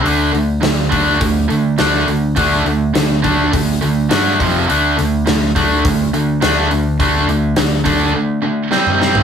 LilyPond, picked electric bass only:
\new Staff \with { instrumentName = "Picked electric bass" } { \clef bass \time 4/4 \key d \minor \tempo 4 = 104 d,8 d,8 d,8 d,8 d,8 d,8 d,8 d,8 | d,8 d,8 d,8 d,8 d,8 d,8 g,8 f,,8 | d,8 d,8 d,8 d,8 d,8 d,8 d,8 d,8 | d,8 d,8 d,8 d,8 r2 | }